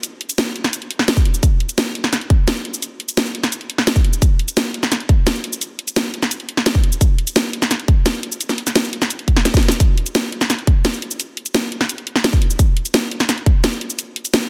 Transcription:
0.03 closed hi-hat, shaker
0.21 closed hi-hat
0.29 closed hi-hat, shaker
0.38 snare, closed hi-hat, shaker
0.56 closed hi-hat
0.64 snare, shaker
0.73 closed hi-hat, shaker
0.82 closed hi-hat
0.91 closed hi-hat
0.99 snare
1.08 snare, closed hi-hat, shaker
1.17 kick, shaker
1.25 closed hi-hat
1.34 shaker
1.43 kick, closed hi-hat, shaker
1.60 closed hi-hat
1.69 closed hi-hat, shaker
1.78 snare, closed hi-hat, shaker
1.95 closed hi-hat
2.04 snare, shaker
2.13 snare, closed hi-hat, shaker
2.21 closed hi-hat
2.30 kick, closed hi-hat
2.48 snare, closed hi-hat, shaker
2.56 shaker
2.65 closed hi-hat
2.74 shaker
2.82 closed hi-hat, shaker
3.00 closed hi-hat
3.09 closed hi-hat, shaker
3.17 snare, closed hi-hat, shaker
3.26 shaker
3.35 closed hi-hat
3.43 snare, shaker
3.52 closed hi-hat, shaker
3.61 closed hi-hat
3.70 closed hi-hat
3.78 snare
3.87 snare, closed hi-hat, shaker
3.96 kick, shaker
4.05 closed hi-hat
4.13 shaker
4.22 kick, closed hi-hat, shaker
4.39 closed hi-hat
4.48 closed hi-hat, shaker
4.57 snare, closed hi-hat, shaker
4.74 closed hi-hat
4.83 snare, shaker
4.92 snare, closed hi-hat, shaker
5.00 closed hi-hat
5.09 kick, closed hi-hat
5.27 snare, closed hi-hat, shaker
5.35 shaker
5.44 closed hi-hat
5.53 shaker
5.61 closed hi-hat, shaker
5.79 closed hi-hat
5.88 closed hi-hat, shaker
5.96 snare, closed hi-hat, shaker
6.14 closed hi-hat
6.22 snare, shaker
6.31 closed hi-hat, shaker
6.40 closed hi-hat
6.49 closed hi-hat
6.57 snare
6.66 snare, closed hi-hat, shaker
6.75 kick, shaker
6.84 closed hi-hat
6.92 shaker
7.01 kick, closed hi-hat, shaker
7.18 closed hi-hat
7.27 closed hi-hat, shaker
7.36 snare, closed hi-hat, shaker
7.53 closed hi-hat
7.62 snare, shaker
7.71 snare, closed hi-hat, shaker
7.80 closed hi-hat
7.88 kick, closed hi-hat
8.06 snare, closed hi-hat, shaker
8.14 shaker
8.23 closed hi-hat
8.32 shaker
8.41 closed hi-hat, shaker
8.49 snare, shaker
8.58 closed hi-hat
8.67 snare, closed hi-hat, shaker
8.76 snare, closed hi-hat, shaker
8.84 shaker
8.93 closed hi-hat
9.02 snare, shaker
9.10 closed hi-hat, shaker
9.19 closed hi-hat
9.28 kick, closed hi-hat
9.36 snare, closed hi-hat
9.45 snare, closed hi-hat, shaker
9.54 kick, snare, shaker
9.63 closed hi-hat
9.68 snare, shaker
9.80 kick, closed hi-hat, shaker
9.98 closed hi-hat
10.06 closed hi-hat, shaker
10.15 snare, closed hi-hat, shaker
10.32 closed hi-hat
10.41 snare, shaker
10.50 snare, closed hi-hat, shaker
10.59 closed hi-hat
10.67 kick, closed hi-hat
10.85 snare, closed hi-hat, shaker
10.94 shaker
11.02 closed hi-hat
11.11 shaker
11.20 closed hi-hat, shaker
11.37 closed hi-hat
11.46 closed hi-hat, shaker
11.55 snare, closed hi-hat, shaker
11.72 closed hi-hat
11.81 snare, shaker
11.89 closed hi-hat, shaker
11.98 closed hi-hat
12.07 closed hi-hat
12.16 snare
12.24 snare, closed hi-hat, shaker
12.33 kick, shaker
12.42 closed hi-hat
12.50 shaker
12.59 kick, closed hi-hat, shaker
12.77 closed hi-hat
12.85 closed hi-hat, shaker
12.94 snare, closed hi-hat, shaker
13.11 closed hi-hat
13.20 snare, shaker
13.29 snare, closed hi-hat, shaker
13.38 closed hi-hat
13.46 kick, closed hi-hat
13.64 snare, closed hi-hat, shaker
13.72 shaker
13.81 closed hi-hat
13.90 shaker
13.99 closed hi-hat, shaker
14.16 closed hi-hat
14.25 closed hi-hat, shaker
14.34 snare, closed hi-hat, shaker
14.42 shaker

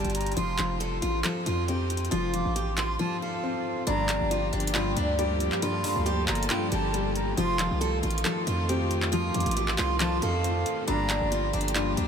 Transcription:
Already playing: G2 G3 G4 A5
0.05 G1, closed hi-hat
0.10 closed hi-hat
0.15 A#5, closed hi-hat, open hi-hat
0.21 closed hi-hat
0.26 closed hi-hat
0.32 closed hi-hat
0.36 F1 F3 F4 C6, closed hi-hat
0.58 F1 F3, clap, closed hi-hat
0.80 A4, closed hi-hat
1.02 A1 F4, closed hi-hat
1.24 F3 A4, clap, closed hi-hat
1.46 F2 F4, closed hi-hat
1.68 C4 G4, closed hi-hat
1.90 closed hi-hat
1.97 closed hi-hat
2.05 closed hi-hat
2.11 F1 F3 F4, closed hi-hat
2.34 F3 D6, closed hi-hat
2.45 A1
2.56 G4, closed hi-hat
2.77 F4 C6, clap, closed hi-hat
2.99 F3 F4 A5
3.21 A4 F5
3.43 C4
3.87 G1 G2 F3 A#3 D4 G4 A#5, closed hi-hat
4.09 G2, clap, closed hi-hat
4.21 G1
4.31 F4, closed hi-hat
4.53 G1 D4, closed hi-hat
4.60 closed hi-hat
4.67 closed hi-hat
4.74 G2 F4, clap, closed hi-hat
4.97 D2 D4, closed hi-hat
5.19 G3 G4, closed hi-hat
5.40 closed hi-hat
5.52 clap
5.62 G2 F4 A4, closed hi-hat
5.84 G2 C6, open hi-hat
5.96 D2
6.06 G4, closed hi-hat
6.28 G1 F4 A#5, clap, closed hi-hat
6.35 closed hi-hat
6.43 closed hi-hat
6.50 G2 F4 G5, clap, closed hi-hat
6.72 G1 G4 A5, closed hi-hat
6.94 G3, closed hi-hat
7.16 A#5, closed hi-hat
7.37 F1 D#3 F3 A3 F4 C6, closed hi-hat
7.59 F3, clap, closed hi-hat
7.71 C2
7.81 A4, closed hi-hat
8.03 A1 F4, closed hi-hat
8.11 closed hi-hat
8.18 closed hi-hat
8.24 F3 A4, clap, closed hi-hat
8.47 F2 F4, closed hi-hat
8.69 C4 G4, closed hi-hat
8.91 closed hi-hat
9.02 clap
9.12 F3 F4, closed hi-hat
9.34 F2 F3 D6, closed hi-hat, open hi-hat
9.40 closed hi-hat
9.46 A1, closed hi-hat
9.51 closed hi-hat
9.57 G4, closed hi-hat
9.68 clap
9.78 C2 F4 C6, clap, closed hi-hat
10.00 F3 F4 A5, clap, closed hi-hat
10.22 F2 A4 F5, closed hi-hat
10.44 C4, closed hi-hat
10.66 closed hi-hat
10.88 G1 G2 F3 A#3 D4 G4 A#5, closed hi-hat
11.10 G2, clap, closed hi-hat
11.21 G1
11.32 F4, closed hi-hat
11.53 G1 D4, closed hi-hat
11.61 closed hi-hat
11.68 closed hi-hat
11.75 G2 F4, clap, closed hi-hat
11.97 D2 D4, closed hi-hat

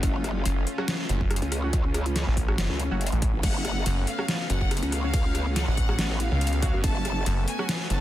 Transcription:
Already playing: A3 C#4 F4
0.03 F#1, kick, closed hi-hat
0.24 cross-stick, closed hi-hat
0.45 F#1, closed hi-hat
0.67 open hi-hat
0.78 F#3 C#4 F#4, cross-stick
0.88 snare, closed hi-hat
1.09 F#1, closed hi-hat
1.21 kick
1.31 cross-stick, closed hi-hat
1.36 closed hi-hat
1.42 C#2, closed hi-hat
1.52 cross-stick, open hi-hat
1.63 F#3 C#4 F#4
1.73 kick, closed hi-hat
1.94 cross-stick, closed hi-hat
2.06 closed hi-hat
2.16 snare, closed hi-hat
2.27 A1
2.37 kick, open hi-hat
2.48 F#3 C#4 F#4, cross-stick
2.58 F#1, snare, closed hi-hat
2.70 C#2
2.80 closed hi-hat
2.91 F#1 F#3 C#4 F#4
3.01 closed hi-hat
3.07 closed hi-hat
3.12 A1, closed hi-hat
3.22 kick, open hi-hat
3.34 A1
3.43 F#1 B3 F#4 F#5, kick, closed hi-hat, crash, ride
3.65 cross-stick, closed hi-hat
3.86 F#1, closed hi-hat, ride
4.07 F5, open hi-hat
4.19 F#3 C#4 F#4, cross-stick
4.28 snare, closed hi-hat, ride
4.50 F#1 F#5, closed hi-hat
4.61 kick
4.71 cross-stick, closed hi-hat, ride
4.77 closed hi-hat
4.83 C#2, closed hi-hat
4.92 F5, cross-stick, open hi-hat
5.04 F#3 C#4 F#4
5.14 kick, closed hi-hat, ride
5.35 cross-stick, closed hi-hat
5.56 F#5, snare, closed hi-hat, ride
5.68 A1
5.77 kick, open hi-hat
5.89 F#3 C#4 F#4, cross-stick
5.99 A1, snare, closed hi-hat, ride
6.20 F5, closed hi-hat
6.31 C#2
6.41 closed hi-hat, ride
6.47 closed hi-hat
6.53 closed hi-hat
6.62 F#3 C#4 F#4, kick, open hi-hat
6.74 F#2
6.84 F#1 A5, kick, closed hi-hat, ride
7.05 cross-stick, closed hi-hat
7.26 F#1, closed hi-hat, ride
7.48 G#5, open hi-hat
7.59 F#3 C#4 F#4, cross-stick
7.69 snare, closed hi-hat, ride
7.90 F#1 A5, closed hi-hat

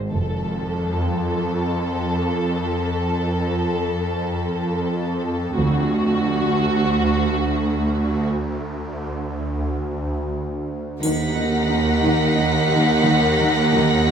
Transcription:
Already playing: G#1
0.11 F1 F2 A4
5.57 D2 F#4
11.01 D#2 D#3 D#4 A#4 F#5 A#6 B6, triangle
11.37 D#4
11.70 D#4
12.05 D#3
12.38 D#4
12.72 D#3
13.06 D#3
13.40 D#3
13.75 D#3

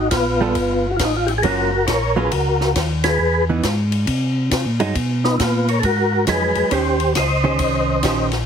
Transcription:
0.11 A#1 B3 F4, kick, snare, hi-hat pedal, ride
0.41 G3 B3 F4 A4
0.55 G1, kick, ride
0.91 F#4
0.97 A1 F4, kick, snare, hi-hat pedal, ride
1.05 D#4
1.17 F4
1.27 E4 G4, ride
1.38 G#4
1.43 F#1 F#3 A#3 C#4 F4 F#4 A#4, kick, ride
1.87 A#1 A#4 C#5, kick, snare, hi-hat pedal, ride
2.16 F#3 A#3 C#4 F4 G#4 B4
2.31 C#2 F#4 A#4, kick, ride
2.61 snare
2.75 D#2, kick, snare, hi-hat pedal, ride
3.04 G#4 B4, snare, ride
3.18 E2
3.49 E3 B3 D#4
3.63 G#2, kick, snare, hi-hat pedal, ride
3.92 ride
4.07 C3, kick, ride
4.51 C3, kick, snare, hi-hat pedal, ride
4.65 A#2
4.80 G2 F#3 G#3 D#4, ride
4.95 B2, kick, ride
5.24 B3 D#4, snare
5.38 A#2 E4 F4, kick, snare, hi-hat pedal, ride
5.42 B3
5.68 A#4 C#5, ride
5.80 G#2 A4, kick, ride
5.85 F#4 A#4
6.27 F2 F#3 G#3 D#4 G#4 B4, kick, snare, hi-hat pedal, ride
6.55 F2, ride
6.71 D#2 D#3 C#4 G4 C5, kick, ride
7.00 ride
7.15 C#2 C5 D#5, kick, snare, hi-hat pedal, ride
7.44 D#3 C#4 G4 C5
7.59 C2, kick, ride
8.03 A#1 D#3 C#4 G4 C5, kick, snare, hi-hat pedal, ride
8.31 snare, ride

